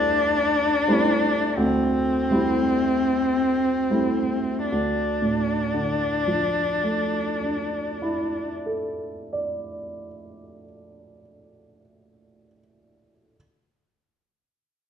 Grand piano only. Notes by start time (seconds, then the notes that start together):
Already playing: D2 G3 A3 C4 E4
0.87 G3 A3 C4 E4
1.57 D2
2.31 G3 A3 C4 E4
3.90 G3 A3 C4 E4
4.72 D2
5.22 A2
5.74 D3
6.27 F3
6.83 A3
7.41 D4
8.02 E4
8.66 A4
9.33 D5